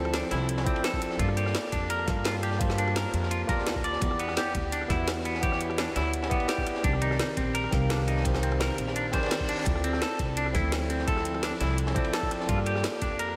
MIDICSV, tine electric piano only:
0, 0, Header, 1, 2, 480
1, 0, Start_track
1, 0, Tempo, 352941
1, 1624, Time_signature, 4, 2, 24, 8
1, 18171, End_track
2, 0, Start_track
2, 0, Title_t, "Tine electric piano"
2, 0, Program_c, 0, 4
2, 0, Control_c, 0, 64, 127
2, 0, Note_on_c, 0, 53, 77
2, 0, Note_on_c, 0, 60, 84
2, 0, Note_on_c, 0, 64, 72
2, 0, Note_on_c, 0, 65, 67
2, 0, Note_on_c, 0, 69, 75
2, 0, Note_on_c, 0, 72, 93
2, 0, Note_on_c, 0, 74, 79
2, 860, Note_off_c, 0, 60, 0
2, 870, Note_off_c, 0, 64, 0
2, 876, Note_off_c, 0, 53, 0
2, 877, Note_on_c, 0, 60, 97
2, 882, Note_off_c, 0, 69, 0
2, 888, Note_off_c, 0, 72, 0
2, 889, Note_on_c, 0, 64, 89
2, 902, Note_on_c, 0, 53, 86
2, 915, Note_on_c, 0, 69, 85
2, 927, Note_off_c, 0, 74, 0
2, 927, Note_on_c, 0, 74, 105
2, 1582, Note_off_c, 0, 60, 0
2, 1589, Note_off_c, 0, 64, 0
2, 1595, Note_off_c, 0, 53, 0
2, 1599, Note_on_c, 0, 58, 78
2, 1602, Note_off_c, 0, 69, 0
2, 1608, Note_off_c, 0, 74, 0
2, 1611, Note_off_c, 0, 65, 0
2, 1611, Note_on_c, 0, 65, 68
2, 1624, Note_on_c, 0, 67, 69
2, 1637, Note_on_c, 0, 69, 69
2, 1642, Control_c, 0, 64, 0
2, 1649, Note_on_c, 0, 74, 78
2, 1896, Control_c, 0, 64, 127
2, 2784, Note_off_c, 0, 58, 0
2, 2790, Note_off_c, 0, 65, 0
2, 2796, Note_off_c, 0, 67, 0
2, 2799, Note_on_c, 0, 58, 78
2, 2803, Note_off_c, 0, 69, 0
2, 2809, Note_off_c, 0, 74, 0
2, 2813, Note_on_c, 0, 65, 70
2, 2825, Note_on_c, 0, 67, 71
2, 2837, Note_on_c, 0, 81, 71
2, 2850, Note_on_c, 0, 77, 85
2, 3504, Note_off_c, 0, 58, 0
2, 3510, Note_off_c, 0, 65, 0
2, 3517, Note_off_c, 0, 67, 0
2, 3518, Note_on_c, 0, 58, 82
2, 3523, Note_off_c, 0, 81, 0
2, 3529, Note_off_c, 0, 77, 0
2, 3531, Note_on_c, 0, 65, 79
2, 3543, Note_on_c, 0, 67, 76
2, 3556, Note_on_c, 0, 81, 79
2, 3569, Note_on_c, 0, 72, 87
2, 4703, Note_off_c, 0, 58, 0
2, 4710, Note_off_c, 0, 65, 0
2, 4716, Note_off_c, 0, 67, 0
2, 4719, Note_on_c, 0, 58, 95
2, 4722, Note_off_c, 0, 81, 0
2, 4728, Note_off_c, 0, 72, 0
2, 4731, Note_on_c, 0, 65, 91
2, 4744, Note_on_c, 0, 67, 85
2, 4757, Note_on_c, 0, 81, 92
2, 4769, Note_on_c, 0, 74, 105
2, 5423, Note_off_c, 0, 58, 0
2, 5430, Note_off_c, 0, 65, 0
2, 5436, Note_off_c, 0, 67, 0
2, 5439, Note_on_c, 0, 59, 73
2, 5442, Note_off_c, 0, 81, 0
2, 5449, Note_off_c, 0, 74, 0
2, 5451, Note_on_c, 0, 64, 65
2, 5464, Note_on_c, 0, 78, 70
2, 5476, Note_on_c, 0, 67, 67
2, 5480, Control_c, 0, 64, 0
2, 5489, Note_on_c, 0, 74, 80
2, 5715, Control_c, 0, 64, 127
2, 6621, Note_off_c, 0, 59, 0
2, 6630, Note_off_c, 0, 64, 0
2, 6636, Note_off_c, 0, 78, 0
2, 6637, Note_on_c, 0, 59, 77
2, 6642, Note_off_c, 0, 67, 0
2, 6649, Note_off_c, 0, 74, 0
2, 6650, Note_on_c, 0, 64, 72
2, 6662, Note_on_c, 0, 66, 66
2, 6675, Note_on_c, 0, 67, 68
2, 6688, Note_on_c, 0, 78, 84
2, 7343, Note_off_c, 0, 59, 0
2, 7349, Note_off_c, 0, 64, 0
2, 7355, Note_off_c, 0, 66, 0
2, 7357, Note_on_c, 0, 59, 79
2, 7362, Note_off_c, 0, 67, 0
2, 7368, Note_off_c, 0, 78, 0
2, 7370, Note_on_c, 0, 64, 75
2, 7382, Note_on_c, 0, 78, 78
2, 7394, Note_on_c, 0, 67, 75
2, 7408, Note_on_c, 0, 73, 91
2, 8542, Note_off_c, 0, 59, 0
2, 8549, Note_off_c, 0, 64, 0
2, 8555, Note_off_c, 0, 78, 0
2, 8557, Note_on_c, 0, 59, 100
2, 8561, Note_off_c, 0, 67, 0
2, 8568, Note_off_c, 0, 73, 0
2, 8569, Note_on_c, 0, 64, 87
2, 8582, Note_on_c, 0, 78, 83
2, 8595, Note_on_c, 0, 67, 88
2, 8608, Note_on_c, 0, 74, 106
2, 9263, Note_off_c, 0, 59, 0
2, 9269, Note_off_c, 0, 64, 0
2, 9275, Note_off_c, 0, 78, 0
2, 9277, Note_on_c, 0, 60, 75
2, 9282, Note_off_c, 0, 67, 0
2, 9288, Note_off_c, 0, 74, 0
2, 9290, Note_on_c, 0, 51, 68
2, 9303, Note_on_c, 0, 67, 68
2, 9315, Note_on_c, 0, 70, 70
2, 9322, Control_c, 0, 64, 0
2, 9328, Note_on_c, 0, 74, 82
2, 9596, Control_c, 0, 64, 127
2, 10463, Note_off_c, 0, 60, 0
2, 10469, Note_off_c, 0, 51, 0
2, 10476, Note_off_c, 0, 67, 0
2, 10480, Note_on_c, 0, 60, 79
2, 10482, Note_off_c, 0, 70, 0
2, 10488, Note_off_c, 0, 74, 0
2, 10493, Note_on_c, 0, 51, 73
2, 10505, Note_on_c, 0, 67, 68
2, 10517, Note_on_c, 0, 70, 71
2, 10530, Note_on_c, 0, 77, 87
2, 11184, Note_off_c, 0, 60, 0
2, 11190, Note_off_c, 0, 51, 0
2, 11197, Note_off_c, 0, 67, 0
2, 11199, Note_on_c, 0, 60, 82
2, 11203, Note_off_c, 0, 70, 0
2, 11209, Note_off_c, 0, 77, 0
2, 11212, Note_on_c, 0, 51, 76
2, 11225, Note_on_c, 0, 67, 75
2, 11237, Note_on_c, 0, 70, 74
2, 11249, Note_on_c, 0, 72, 91
2, 12384, Note_off_c, 0, 60, 0
2, 12390, Note_off_c, 0, 51, 0
2, 12397, Note_off_c, 0, 67, 0
2, 12398, Note_on_c, 0, 60, 97
2, 12403, Note_off_c, 0, 70, 0
2, 12409, Note_off_c, 0, 72, 0
2, 12412, Note_on_c, 0, 51, 86
2, 12424, Note_on_c, 0, 67, 83
2, 12437, Note_on_c, 0, 70, 87
2, 12449, Note_on_c, 0, 74, 104
2, 13103, Note_off_c, 0, 60, 0
2, 13110, Note_off_c, 0, 51, 0
2, 13116, Note_off_c, 0, 67, 0
2, 13117, Note_on_c, 0, 60, 76
2, 13123, Note_off_c, 0, 70, 0
2, 13129, Note_off_c, 0, 74, 0
2, 13130, Note_on_c, 0, 64, 67
2, 13143, Note_on_c, 0, 65, 69
2, 13156, Note_on_c, 0, 69, 68
2, 13164, Control_c, 0, 64, 0
2, 13168, Note_on_c, 0, 74, 84
2, 13421, Control_c, 0, 64, 127
2, 14303, Note_off_c, 0, 60, 0
2, 14309, Note_off_c, 0, 64, 0
2, 14316, Note_off_c, 0, 65, 0
2, 14316, Note_on_c, 0, 60, 77
2, 14322, Note_off_c, 0, 69, 0
2, 14328, Note_off_c, 0, 74, 0
2, 14330, Note_on_c, 0, 64, 71
2, 14342, Note_on_c, 0, 53, 71
2, 14355, Note_on_c, 0, 69, 72
2, 15022, Note_off_c, 0, 60, 0
2, 15029, Note_off_c, 0, 64, 0
2, 15035, Note_off_c, 0, 53, 0
2, 15038, Note_on_c, 0, 60, 83
2, 15042, Note_off_c, 0, 69, 0
2, 15050, Note_on_c, 0, 64, 73
2, 15063, Note_on_c, 0, 53, 71
2, 15077, Note_on_c, 0, 69, 79
2, 15088, Note_on_c, 0, 72, 94
2, 16223, Note_off_c, 0, 60, 0
2, 16229, Note_off_c, 0, 64, 0
2, 16236, Note_off_c, 0, 53, 0
2, 16239, Note_on_c, 0, 60, 96
2, 16242, Note_off_c, 0, 69, 0
2, 16248, Note_off_c, 0, 72, 0
2, 16252, Note_on_c, 0, 64, 83
2, 16264, Note_on_c, 0, 53, 83
2, 16277, Note_on_c, 0, 69, 89
2, 16289, Note_on_c, 0, 74, 108
2, 16944, Note_off_c, 0, 60, 0
2, 16950, Note_off_c, 0, 64, 0
2, 16956, Note_off_c, 0, 53, 0
2, 16957, Note_on_c, 0, 58, 75
2, 16963, Note_off_c, 0, 69, 0
2, 16969, Note_off_c, 0, 74, 0
2, 16970, Note_on_c, 0, 65, 68
2, 16983, Note_on_c, 0, 67, 68
2, 16996, Note_on_c, 0, 69, 70
2, 17004, Control_c, 0, 64, 0
2, 17008, Note_on_c, 0, 74, 84
2, 17212, Control_c, 0, 64, 127
2, 18143, Note_off_c, 0, 58, 0
2, 18149, Note_off_c, 0, 65, 0
2, 18156, Note_off_c, 0, 67, 0
2, 18162, Note_off_c, 0, 69, 0
2, 18168, Note_off_c, 0, 74, 0
2, 18171, End_track
0, 0, End_of_file